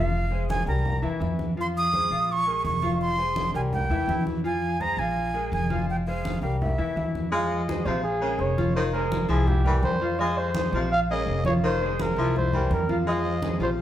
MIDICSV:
0, 0, Header, 1, 7, 480
1, 0, Start_track
1, 0, Key_signature, -4, "minor"
1, 0, Tempo, 359497
1, 164, Time_signature, 4, 2, 24, 8
1, 18446, End_track
2, 0, Start_track
2, 0, Title_t, "Flute"
2, 0, Program_c, 0, 73
2, 0, Note_on_c, 0, 77, 89
2, 604, Note_off_c, 0, 77, 0
2, 662, Note_on_c, 0, 80, 88
2, 877, Note_off_c, 0, 80, 0
2, 904, Note_on_c, 0, 82, 80
2, 1453, Note_off_c, 0, 82, 0
2, 2145, Note_on_c, 0, 84, 98
2, 2226, Note_off_c, 0, 84, 0
2, 2367, Note_on_c, 0, 87, 113
2, 3098, Note_on_c, 0, 85, 96
2, 3118, Note_off_c, 0, 87, 0
2, 3540, Note_off_c, 0, 85, 0
2, 3548, Note_on_c, 0, 85, 94
2, 3986, Note_off_c, 0, 85, 0
2, 4028, Note_on_c, 0, 84, 102
2, 4689, Note_off_c, 0, 84, 0
2, 4745, Note_on_c, 0, 80, 77
2, 4825, Note_off_c, 0, 80, 0
2, 4988, Note_on_c, 0, 79, 91
2, 5649, Note_off_c, 0, 79, 0
2, 5948, Note_on_c, 0, 80, 99
2, 6424, Note_on_c, 0, 82, 92
2, 6444, Note_off_c, 0, 80, 0
2, 6660, Note_on_c, 0, 80, 89
2, 6680, Note_off_c, 0, 82, 0
2, 7376, Note_off_c, 0, 80, 0
2, 7389, Note_on_c, 0, 80, 81
2, 7827, Note_off_c, 0, 80, 0
2, 7877, Note_on_c, 0, 79, 91
2, 7957, Note_off_c, 0, 79, 0
2, 8101, Note_on_c, 0, 77, 88
2, 8543, Note_off_c, 0, 77, 0
2, 8577, Note_on_c, 0, 77, 77
2, 8798, Note_off_c, 0, 77, 0
2, 8824, Note_on_c, 0, 76, 69
2, 9488, Note_off_c, 0, 76, 0
2, 18446, End_track
3, 0, Start_track
3, 0, Title_t, "Muted trumpet"
3, 0, Program_c, 1, 59
3, 9768, Note_on_c, 1, 75, 101
3, 10492, Note_on_c, 1, 72, 94
3, 10512, Note_off_c, 1, 75, 0
3, 10717, Note_off_c, 1, 72, 0
3, 10725, Note_on_c, 1, 68, 95
3, 11214, Note_on_c, 1, 73, 94
3, 11234, Note_off_c, 1, 68, 0
3, 11687, Note_off_c, 1, 73, 0
3, 11695, Note_on_c, 1, 72, 98
3, 11802, Note_off_c, 1, 72, 0
3, 11923, Note_on_c, 1, 70, 94
3, 12408, Note_on_c, 1, 68, 94
3, 12428, Note_off_c, 1, 70, 0
3, 12646, Note_on_c, 1, 67, 92
3, 12666, Note_off_c, 1, 68, 0
3, 13127, Note_off_c, 1, 67, 0
3, 13136, Note_on_c, 1, 72, 102
3, 13613, Note_on_c, 1, 75, 106
3, 13633, Note_off_c, 1, 72, 0
3, 13855, Note_on_c, 1, 72, 115
3, 13875, Note_off_c, 1, 75, 0
3, 14571, Note_off_c, 1, 72, 0
3, 14579, Note_on_c, 1, 77, 116
3, 14684, Note_off_c, 1, 77, 0
3, 14837, Note_on_c, 1, 75, 111
3, 15269, Note_off_c, 1, 75, 0
3, 15300, Note_on_c, 1, 73, 99
3, 15405, Note_off_c, 1, 73, 0
3, 15558, Note_on_c, 1, 72, 113
3, 16041, Note_on_c, 1, 70, 105
3, 16061, Note_off_c, 1, 72, 0
3, 16503, Note_off_c, 1, 70, 0
3, 16523, Note_on_c, 1, 72, 105
3, 16952, Note_off_c, 1, 72, 0
3, 17009, Note_on_c, 1, 70, 87
3, 17323, Note_off_c, 1, 70, 0
3, 17472, Note_on_c, 1, 75, 111
3, 18128, Note_off_c, 1, 75, 0
3, 18196, Note_on_c, 1, 72, 94
3, 18296, Note_off_c, 1, 72, 0
3, 18446, End_track
4, 0, Start_track
4, 0, Title_t, "Grand piano"
4, 0, Program_c, 2, 0
4, 0, Note_on_c, 2, 53, 79
4, 0, Note_on_c, 2, 65, 82
4, 0, Note_on_c, 2, 77, 83
4, 323, Note_off_c, 2, 53, 0
4, 324, Note_off_c, 2, 65, 0
4, 324, Note_off_c, 2, 77, 0
4, 407, Note_on_c, 2, 56, 74
4, 420, Note_on_c, 2, 68, 73
4, 420, Note_on_c, 2, 72, 72
4, 800, Note_off_c, 2, 56, 0
4, 808, Note_off_c, 2, 68, 0
4, 808, Note_off_c, 2, 72, 0
4, 899, Note_on_c, 2, 55, 73
4, 901, Note_on_c, 2, 67, 70
4, 906, Note_on_c, 2, 70, 74
4, 1287, Note_off_c, 2, 55, 0
4, 1288, Note_off_c, 2, 67, 0
4, 1291, Note_off_c, 2, 70, 0
4, 1365, Note_on_c, 2, 64, 86
4, 1368, Note_on_c, 2, 52, 87
4, 1375, Note_on_c, 2, 76, 84
4, 1562, Note_off_c, 2, 64, 0
4, 1564, Note_off_c, 2, 52, 0
4, 1568, Note_off_c, 2, 76, 0
4, 1602, Note_on_c, 2, 52, 75
4, 1607, Note_on_c, 2, 64, 69
4, 1612, Note_on_c, 2, 76, 71
4, 1998, Note_off_c, 2, 52, 0
4, 2000, Note_off_c, 2, 64, 0
4, 2004, Note_off_c, 2, 76, 0
4, 2095, Note_on_c, 2, 53, 82
4, 2096, Note_on_c, 2, 65, 73
4, 2100, Note_on_c, 2, 77, 78
4, 2485, Note_off_c, 2, 53, 0
4, 2486, Note_off_c, 2, 65, 0
4, 2488, Note_off_c, 2, 77, 0
4, 2576, Note_on_c, 2, 56, 69
4, 2577, Note_on_c, 2, 68, 63
4, 2583, Note_on_c, 2, 72, 69
4, 2769, Note_off_c, 2, 56, 0
4, 2770, Note_off_c, 2, 68, 0
4, 2773, Note_off_c, 2, 72, 0
4, 2816, Note_on_c, 2, 53, 83
4, 2817, Note_on_c, 2, 65, 81
4, 2821, Note_on_c, 2, 77, 80
4, 3207, Note_off_c, 2, 53, 0
4, 3207, Note_off_c, 2, 65, 0
4, 3209, Note_off_c, 2, 77, 0
4, 3282, Note_on_c, 2, 56, 71
4, 3289, Note_on_c, 2, 68, 73
4, 3292, Note_on_c, 2, 70, 72
4, 3679, Note_off_c, 2, 56, 0
4, 3682, Note_off_c, 2, 68, 0
4, 3684, Note_off_c, 2, 70, 0
4, 3770, Note_on_c, 2, 53, 86
4, 3773, Note_on_c, 2, 65, 88
4, 3778, Note_on_c, 2, 77, 85
4, 4163, Note_off_c, 2, 53, 0
4, 4165, Note_off_c, 2, 65, 0
4, 4168, Note_off_c, 2, 77, 0
4, 4243, Note_on_c, 2, 68, 72
4, 4246, Note_on_c, 2, 56, 68
4, 4254, Note_on_c, 2, 72, 73
4, 4640, Note_off_c, 2, 68, 0
4, 4641, Note_off_c, 2, 56, 0
4, 4646, Note_off_c, 2, 72, 0
4, 4729, Note_on_c, 2, 55, 77
4, 4732, Note_on_c, 2, 70, 77
4, 4735, Note_on_c, 2, 67, 70
4, 5123, Note_off_c, 2, 55, 0
4, 5125, Note_off_c, 2, 70, 0
4, 5126, Note_off_c, 2, 67, 0
4, 5210, Note_on_c, 2, 52, 86
4, 5215, Note_on_c, 2, 76, 89
4, 5216, Note_on_c, 2, 64, 81
4, 5407, Note_off_c, 2, 52, 0
4, 5410, Note_off_c, 2, 76, 0
4, 5411, Note_off_c, 2, 64, 0
4, 5442, Note_on_c, 2, 52, 72
4, 5448, Note_on_c, 2, 76, 68
4, 5450, Note_on_c, 2, 64, 74
4, 5839, Note_off_c, 2, 52, 0
4, 5843, Note_off_c, 2, 76, 0
4, 5844, Note_off_c, 2, 64, 0
4, 5925, Note_on_c, 2, 53, 77
4, 5927, Note_on_c, 2, 65, 80
4, 5931, Note_on_c, 2, 77, 85
4, 6321, Note_off_c, 2, 53, 0
4, 6322, Note_off_c, 2, 65, 0
4, 6325, Note_off_c, 2, 77, 0
4, 6407, Note_on_c, 2, 56, 70
4, 6414, Note_on_c, 2, 68, 67
4, 6414, Note_on_c, 2, 72, 69
4, 6606, Note_off_c, 2, 56, 0
4, 6609, Note_off_c, 2, 68, 0
4, 6610, Note_off_c, 2, 72, 0
4, 6661, Note_on_c, 2, 53, 87
4, 6665, Note_on_c, 2, 65, 83
4, 6666, Note_on_c, 2, 77, 81
4, 7050, Note_off_c, 2, 53, 0
4, 7053, Note_off_c, 2, 65, 0
4, 7053, Note_off_c, 2, 77, 0
4, 7126, Note_on_c, 2, 68, 76
4, 7130, Note_on_c, 2, 56, 76
4, 7134, Note_on_c, 2, 70, 75
4, 7522, Note_off_c, 2, 68, 0
4, 7524, Note_off_c, 2, 56, 0
4, 7526, Note_off_c, 2, 70, 0
4, 7611, Note_on_c, 2, 53, 88
4, 7612, Note_on_c, 2, 65, 84
4, 7617, Note_on_c, 2, 77, 84
4, 8005, Note_off_c, 2, 53, 0
4, 8005, Note_off_c, 2, 65, 0
4, 8009, Note_off_c, 2, 77, 0
4, 8107, Note_on_c, 2, 56, 74
4, 8109, Note_on_c, 2, 72, 79
4, 8113, Note_on_c, 2, 68, 71
4, 8494, Note_off_c, 2, 56, 0
4, 8495, Note_off_c, 2, 72, 0
4, 8498, Note_off_c, 2, 68, 0
4, 8579, Note_on_c, 2, 67, 68
4, 8580, Note_on_c, 2, 55, 69
4, 8585, Note_on_c, 2, 70, 71
4, 8970, Note_off_c, 2, 55, 0
4, 8970, Note_off_c, 2, 67, 0
4, 8973, Note_off_c, 2, 70, 0
4, 9054, Note_on_c, 2, 52, 88
4, 9055, Note_on_c, 2, 64, 88
4, 9057, Note_on_c, 2, 76, 86
4, 9250, Note_off_c, 2, 52, 0
4, 9251, Note_off_c, 2, 64, 0
4, 9252, Note_off_c, 2, 76, 0
4, 9293, Note_on_c, 2, 64, 74
4, 9294, Note_on_c, 2, 52, 76
4, 9296, Note_on_c, 2, 76, 73
4, 9686, Note_off_c, 2, 52, 0
4, 9686, Note_off_c, 2, 64, 0
4, 9688, Note_off_c, 2, 76, 0
4, 9766, Note_on_c, 2, 53, 84
4, 9774, Note_on_c, 2, 65, 92
4, 9776, Note_on_c, 2, 77, 83
4, 10162, Note_off_c, 2, 53, 0
4, 10166, Note_off_c, 2, 65, 0
4, 10168, Note_off_c, 2, 77, 0
4, 10255, Note_on_c, 2, 56, 79
4, 10259, Note_on_c, 2, 68, 74
4, 10267, Note_on_c, 2, 72, 69
4, 10450, Note_off_c, 2, 56, 0
4, 10452, Note_off_c, 2, 68, 0
4, 10457, Note_off_c, 2, 72, 0
4, 10486, Note_on_c, 2, 53, 88
4, 10495, Note_on_c, 2, 65, 90
4, 10498, Note_on_c, 2, 77, 97
4, 10882, Note_off_c, 2, 53, 0
4, 10887, Note_off_c, 2, 65, 0
4, 10889, Note_off_c, 2, 77, 0
4, 10963, Note_on_c, 2, 56, 85
4, 10966, Note_on_c, 2, 68, 79
4, 10969, Note_on_c, 2, 70, 84
4, 11359, Note_off_c, 2, 56, 0
4, 11361, Note_off_c, 2, 68, 0
4, 11363, Note_off_c, 2, 70, 0
4, 11448, Note_on_c, 2, 53, 87
4, 11453, Note_on_c, 2, 65, 89
4, 11461, Note_on_c, 2, 77, 92
4, 11842, Note_off_c, 2, 53, 0
4, 11845, Note_off_c, 2, 65, 0
4, 11850, Note_off_c, 2, 77, 0
4, 11931, Note_on_c, 2, 56, 86
4, 11934, Note_on_c, 2, 68, 76
4, 11939, Note_on_c, 2, 72, 80
4, 12324, Note_off_c, 2, 56, 0
4, 12325, Note_off_c, 2, 68, 0
4, 12328, Note_off_c, 2, 72, 0
4, 12396, Note_on_c, 2, 53, 93
4, 12403, Note_on_c, 2, 64, 98
4, 12405, Note_on_c, 2, 76, 87
4, 12795, Note_off_c, 2, 53, 0
4, 12799, Note_off_c, 2, 64, 0
4, 12800, Note_off_c, 2, 76, 0
4, 12875, Note_on_c, 2, 55, 88
4, 12879, Note_on_c, 2, 67, 86
4, 12888, Note_on_c, 2, 70, 82
4, 13274, Note_off_c, 2, 55, 0
4, 13276, Note_off_c, 2, 67, 0
4, 13282, Note_off_c, 2, 70, 0
4, 13369, Note_on_c, 2, 53, 90
4, 13374, Note_on_c, 2, 65, 83
4, 13376, Note_on_c, 2, 77, 93
4, 13565, Note_off_c, 2, 53, 0
4, 13568, Note_off_c, 2, 65, 0
4, 13569, Note_off_c, 2, 77, 0
4, 13599, Note_on_c, 2, 53, 91
4, 13604, Note_on_c, 2, 65, 89
4, 13608, Note_on_c, 2, 77, 84
4, 13996, Note_off_c, 2, 53, 0
4, 13999, Note_off_c, 2, 65, 0
4, 14001, Note_off_c, 2, 77, 0
4, 14099, Note_on_c, 2, 68, 73
4, 14100, Note_on_c, 2, 56, 70
4, 14101, Note_on_c, 2, 72, 74
4, 14291, Note_off_c, 2, 68, 0
4, 14292, Note_off_c, 2, 56, 0
4, 14292, Note_off_c, 2, 72, 0
4, 14337, Note_on_c, 2, 65, 89
4, 14340, Note_on_c, 2, 53, 96
4, 14344, Note_on_c, 2, 77, 89
4, 14726, Note_off_c, 2, 65, 0
4, 14728, Note_off_c, 2, 53, 0
4, 14731, Note_off_c, 2, 77, 0
4, 14825, Note_on_c, 2, 56, 84
4, 14828, Note_on_c, 2, 68, 80
4, 14837, Note_on_c, 2, 70, 79
4, 15211, Note_off_c, 2, 56, 0
4, 15213, Note_off_c, 2, 68, 0
4, 15218, Note_off_c, 2, 70, 0
4, 15291, Note_on_c, 2, 53, 92
4, 15296, Note_on_c, 2, 65, 91
4, 15299, Note_on_c, 2, 77, 94
4, 15682, Note_off_c, 2, 53, 0
4, 15686, Note_off_c, 2, 65, 0
4, 15687, Note_off_c, 2, 77, 0
4, 15778, Note_on_c, 2, 56, 86
4, 15779, Note_on_c, 2, 68, 76
4, 15788, Note_on_c, 2, 72, 79
4, 16166, Note_off_c, 2, 56, 0
4, 16167, Note_off_c, 2, 68, 0
4, 16172, Note_off_c, 2, 72, 0
4, 16260, Note_on_c, 2, 53, 89
4, 16264, Note_on_c, 2, 64, 84
4, 16267, Note_on_c, 2, 76, 87
4, 16647, Note_off_c, 2, 53, 0
4, 16650, Note_off_c, 2, 64, 0
4, 16652, Note_off_c, 2, 76, 0
4, 16747, Note_on_c, 2, 55, 75
4, 16751, Note_on_c, 2, 67, 79
4, 16757, Note_on_c, 2, 70, 83
4, 17131, Note_off_c, 2, 55, 0
4, 17134, Note_off_c, 2, 67, 0
4, 17137, Note_off_c, 2, 70, 0
4, 17213, Note_on_c, 2, 53, 86
4, 17216, Note_on_c, 2, 65, 83
4, 17219, Note_on_c, 2, 77, 87
4, 17407, Note_off_c, 2, 53, 0
4, 17408, Note_off_c, 2, 65, 0
4, 17410, Note_off_c, 2, 77, 0
4, 17454, Note_on_c, 2, 53, 84
4, 17461, Note_on_c, 2, 77, 82
4, 17463, Note_on_c, 2, 65, 91
4, 17843, Note_off_c, 2, 53, 0
4, 17848, Note_off_c, 2, 77, 0
4, 17849, Note_off_c, 2, 65, 0
4, 17932, Note_on_c, 2, 56, 74
4, 17935, Note_on_c, 2, 68, 76
4, 17938, Note_on_c, 2, 72, 68
4, 18125, Note_off_c, 2, 56, 0
4, 18127, Note_off_c, 2, 68, 0
4, 18129, Note_off_c, 2, 72, 0
4, 18159, Note_on_c, 2, 53, 82
4, 18163, Note_on_c, 2, 65, 94
4, 18168, Note_on_c, 2, 77, 92
4, 18446, Note_off_c, 2, 53, 0
4, 18446, Note_off_c, 2, 65, 0
4, 18446, Note_off_c, 2, 77, 0
4, 18446, End_track
5, 0, Start_track
5, 0, Title_t, "Baritone saxophone"
5, 0, Program_c, 3, 67
5, 9772, Note_on_c, 3, 56, 101
5, 10169, Note_off_c, 3, 56, 0
5, 10503, Note_on_c, 3, 48, 81
5, 10752, Note_off_c, 3, 48, 0
5, 10968, Note_on_c, 3, 49, 80
5, 11366, Note_off_c, 3, 49, 0
5, 11696, Note_on_c, 3, 51, 94
5, 12091, Note_off_c, 3, 51, 0
5, 12407, Note_on_c, 3, 53, 74
5, 12660, Note_off_c, 3, 53, 0
5, 12905, Note_on_c, 3, 52, 83
5, 13296, Note_off_c, 3, 52, 0
5, 13625, Note_on_c, 3, 56, 96
5, 14016, Note_off_c, 3, 56, 0
5, 14351, Note_on_c, 3, 48, 76
5, 14597, Note_off_c, 3, 48, 0
5, 14833, Note_on_c, 3, 49, 76
5, 15220, Note_off_c, 3, 49, 0
5, 15535, Note_on_c, 3, 51, 92
5, 15928, Note_off_c, 3, 51, 0
5, 16263, Note_on_c, 3, 53, 83
5, 16510, Note_off_c, 3, 53, 0
5, 16735, Note_on_c, 3, 52, 74
5, 17128, Note_off_c, 3, 52, 0
5, 17449, Note_on_c, 3, 56, 92
5, 17844, Note_off_c, 3, 56, 0
5, 18169, Note_on_c, 3, 48, 76
5, 18419, Note_off_c, 3, 48, 0
5, 18446, End_track
6, 0, Start_track
6, 0, Title_t, "Upright bass"
6, 0, Program_c, 4, 32
6, 0, Note_on_c, 4, 29, 94
6, 805, Note_off_c, 4, 29, 0
6, 887, Note_on_c, 4, 36, 83
6, 1333, Note_off_c, 4, 36, 0
6, 1367, Note_on_c, 4, 40, 68
6, 1590, Note_off_c, 4, 40, 0
6, 1606, Note_on_c, 4, 41, 84
6, 2730, Note_off_c, 4, 41, 0
6, 2807, Note_on_c, 4, 34, 78
6, 3477, Note_off_c, 4, 34, 0
6, 3531, Note_on_c, 4, 29, 88
6, 4653, Note_off_c, 4, 29, 0
6, 4729, Note_on_c, 4, 36, 84
6, 5176, Note_off_c, 4, 36, 0
6, 5202, Note_on_c, 4, 40, 72
6, 5429, Note_off_c, 4, 40, 0
6, 5440, Note_on_c, 4, 41, 81
6, 6568, Note_off_c, 4, 41, 0
6, 6635, Note_on_c, 4, 34, 84
6, 7312, Note_off_c, 4, 34, 0
6, 7366, Note_on_c, 4, 29, 90
6, 8492, Note_off_c, 4, 29, 0
6, 8569, Note_on_c, 4, 36, 83
6, 9016, Note_off_c, 4, 36, 0
6, 9059, Note_on_c, 4, 40, 72
6, 9279, Note_off_c, 4, 40, 0
6, 9295, Note_on_c, 4, 41, 80
6, 10415, Note_off_c, 4, 41, 0
6, 10488, Note_on_c, 4, 34, 96
6, 11159, Note_off_c, 4, 34, 0
6, 11198, Note_on_c, 4, 29, 90
6, 12326, Note_off_c, 4, 29, 0
6, 12397, Note_on_c, 4, 36, 96
6, 13072, Note_off_c, 4, 36, 0
6, 13117, Note_on_c, 4, 41, 90
6, 14244, Note_off_c, 4, 41, 0
6, 14321, Note_on_c, 4, 34, 96
6, 14993, Note_off_c, 4, 34, 0
6, 15038, Note_on_c, 4, 29, 89
6, 16164, Note_off_c, 4, 29, 0
6, 16241, Note_on_c, 4, 36, 91
6, 16912, Note_off_c, 4, 36, 0
6, 16962, Note_on_c, 4, 41, 94
6, 18085, Note_off_c, 4, 41, 0
6, 18155, Note_on_c, 4, 34, 90
6, 18446, Note_off_c, 4, 34, 0
6, 18446, End_track
7, 0, Start_track
7, 0, Title_t, "Drums"
7, 185, Note_on_c, 9, 63, 33
7, 319, Note_off_c, 9, 63, 0
7, 423, Note_on_c, 9, 63, 36
7, 556, Note_off_c, 9, 63, 0
7, 668, Note_on_c, 9, 63, 91
7, 801, Note_off_c, 9, 63, 0
7, 904, Note_on_c, 9, 63, 36
7, 1037, Note_off_c, 9, 63, 0
7, 1138, Note_on_c, 9, 63, 35
7, 1138, Note_on_c, 9, 64, 83
7, 1271, Note_off_c, 9, 63, 0
7, 1271, Note_off_c, 9, 64, 0
7, 1379, Note_on_c, 9, 63, 35
7, 1513, Note_off_c, 9, 63, 0
7, 1622, Note_on_c, 9, 63, 80
7, 1756, Note_off_c, 9, 63, 0
7, 1858, Note_on_c, 9, 63, 80
7, 1992, Note_off_c, 9, 63, 0
7, 2101, Note_on_c, 9, 63, 33
7, 2235, Note_off_c, 9, 63, 0
7, 2346, Note_on_c, 9, 63, 37
7, 2479, Note_off_c, 9, 63, 0
7, 2586, Note_on_c, 9, 63, 61
7, 2719, Note_off_c, 9, 63, 0
7, 2814, Note_on_c, 9, 63, 33
7, 2947, Note_off_c, 9, 63, 0
7, 3058, Note_on_c, 9, 63, 34
7, 3192, Note_off_c, 9, 63, 0
7, 3300, Note_on_c, 9, 63, 34
7, 3434, Note_off_c, 9, 63, 0
7, 3533, Note_on_c, 9, 63, 83
7, 3666, Note_off_c, 9, 63, 0
7, 3768, Note_on_c, 9, 63, 84
7, 3901, Note_off_c, 9, 63, 0
7, 4017, Note_on_c, 9, 63, 35
7, 4150, Note_off_c, 9, 63, 0
7, 4255, Note_on_c, 9, 63, 34
7, 4388, Note_off_c, 9, 63, 0
7, 4488, Note_on_c, 9, 63, 93
7, 4622, Note_off_c, 9, 63, 0
7, 4734, Note_on_c, 9, 63, 36
7, 4867, Note_off_c, 9, 63, 0
7, 4976, Note_on_c, 9, 63, 36
7, 4976, Note_on_c, 9, 64, 84
7, 5109, Note_off_c, 9, 63, 0
7, 5109, Note_off_c, 9, 64, 0
7, 5225, Note_on_c, 9, 63, 34
7, 5225, Note_on_c, 9, 64, 68
7, 5359, Note_off_c, 9, 63, 0
7, 5359, Note_off_c, 9, 64, 0
7, 5459, Note_on_c, 9, 63, 86
7, 5592, Note_off_c, 9, 63, 0
7, 5697, Note_on_c, 9, 63, 82
7, 5830, Note_off_c, 9, 63, 0
7, 5946, Note_on_c, 9, 63, 33
7, 6079, Note_off_c, 9, 63, 0
7, 6173, Note_on_c, 9, 63, 36
7, 6307, Note_off_c, 9, 63, 0
7, 6417, Note_on_c, 9, 63, 56
7, 6551, Note_off_c, 9, 63, 0
7, 6654, Note_on_c, 9, 63, 35
7, 6787, Note_off_c, 9, 63, 0
7, 6893, Note_on_c, 9, 63, 39
7, 7026, Note_off_c, 9, 63, 0
7, 7141, Note_on_c, 9, 63, 35
7, 7274, Note_off_c, 9, 63, 0
7, 7382, Note_on_c, 9, 63, 84
7, 7515, Note_off_c, 9, 63, 0
7, 7616, Note_on_c, 9, 63, 88
7, 7749, Note_off_c, 9, 63, 0
7, 7866, Note_on_c, 9, 63, 38
7, 7999, Note_off_c, 9, 63, 0
7, 8098, Note_on_c, 9, 63, 36
7, 8232, Note_off_c, 9, 63, 0
7, 8347, Note_on_c, 9, 63, 90
7, 8480, Note_off_c, 9, 63, 0
7, 8592, Note_on_c, 9, 63, 37
7, 8725, Note_off_c, 9, 63, 0
7, 8835, Note_on_c, 9, 63, 35
7, 8835, Note_on_c, 9, 64, 93
7, 8969, Note_off_c, 9, 63, 0
7, 8969, Note_off_c, 9, 64, 0
7, 9068, Note_on_c, 9, 63, 35
7, 9201, Note_off_c, 9, 63, 0
7, 9307, Note_on_c, 9, 63, 83
7, 9441, Note_off_c, 9, 63, 0
7, 9550, Note_on_c, 9, 63, 83
7, 9684, Note_off_c, 9, 63, 0
7, 9794, Note_on_c, 9, 63, 35
7, 9927, Note_off_c, 9, 63, 0
7, 10036, Note_on_c, 9, 63, 35
7, 10169, Note_off_c, 9, 63, 0
7, 10268, Note_on_c, 9, 63, 99
7, 10402, Note_off_c, 9, 63, 0
7, 10507, Note_on_c, 9, 63, 36
7, 10641, Note_off_c, 9, 63, 0
7, 10741, Note_on_c, 9, 63, 41
7, 10875, Note_off_c, 9, 63, 0
7, 10987, Note_on_c, 9, 63, 35
7, 11121, Note_off_c, 9, 63, 0
7, 11220, Note_on_c, 9, 63, 37
7, 11354, Note_off_c, 9, 63, 0
7, 11458, Note_on_c, 9, 63, 90
7, 11592, Note_off_c, 9, 63, 0
7, 11701, Note_on_c, 9, 63, 37
7, 11835, Note_off_c, 9, 63, 0
7, 11942, Note_on_c, 9, 63, 38
7, 12075, Note_off_c, 9, 63, 0
7, 12173, Note_on_c, 9, 63, 98
7, 12307, Note_off_c, 9, 63, 0
7, 12417, Note_on_c, 9, 63, 38
7, 12550, Note_off_c, 9, 63, 0
7, 12650, Note_on_c, 9, 63, 38
7, 12650, Note_on_c, 9, 64, 87
7, 12783, Note_off_c, 9, 63, 0
7, 12783, Note_off_c, 9, 64, 0
7, 12894, Note_on_c, 9, 63, 39
7, 12894, Note_on_c, 9, 64, 74
7, 13028, Note_off_c, 9, 63, 0
7, 13028, Note_off_c, 9, 64, 0
7, 13123, Note_on_c, 9, 63, 88
7, 13257, Note_off_c, 9, 63, 0
7, 13608, Note_on_c, 9, 63, 38
7, 13741, Note_off_c, 9, 63, 0
7, 13849, Note_on_c, 9, 63, 39
7, 13983, Note_off_c, 9, 63, 0
7, 14080, Note_on_c, 9, 63, 110
7, 14214, Note_off_c, 9, 63, 0
7, 14324, Note_on_c, 9, 63, 37
7, 14457, Note_off_c, 9, 63, 0
7, 14567, Note_on_c, 9, 63, 38
7, 14700, Note_off_c, 9, 63, 0
7, 14810, Note_on_c, 9, 63, 37
7, 14944, Note_off_c, 9, 63, 0
7, 15044, Note_on_c, 9, 63, 34
7, 15177, Note_off_c, 9, 63, 0
7, 15285, Note_on_c, 9, 63, 88
7, 15418, Note_off_c, 9, 63, 0
7, 15534, Note_on_c, 9, 63, 40
7, 15667, Note_off_c, 9, 63, 0
7, 15770, Note_on_c, 9, 63, 37
7, 15903, Note_off_c, 9, 63, 0
7, 16016, Note_on_c, 9, 63, 98
7, 16149, Note_off_c, 9, 63, 0
7, 16259, Note_on_c, 9, 63, 39
7, 16393, Note_off_c, 9, 63, 0
7, 16503, Note_on_c, 9, 63, 37
7, 16503, Note_on_c, 9, 64, 84
7, 16637, Note_off_c, 9, 63, 0
7, 16637, Note_off_c, 9, 64, 0
7, 16734, Note_on_c, 9, 63, 38
7, 16734, Note_on_c, 9, 64, 74
7, 16868, Note_off_c, 9, 63, 0
7, 16868, Note_off_c, 9, 64, 0
7, 16970, Note_on_c, 9, 63, 86
7, 17103, Note_off_c, 9, 63, 0
7, 17215, Note_on_c, 9, 63, 73
7, 17348, Note_off_c, 9, 63, 0
7, 17452, Note_on_c, 9, 63, 35
7, 17585, Note_off_c, 9, 63, 0
7, 17698, Note_on_c, 9, 63, 39
7, 17831, Note_off_c, 9, 63, 0
7, 17924, Note_on_c, 9, 63, 99
7, 18058, Note_off_c, 9, 63, 0
7, 18177, Note_on_c, 9, 63, 39
7, 18311, Note_off_c, 9, 63, 0
7, 18446, End_track
0, 0, End_of_file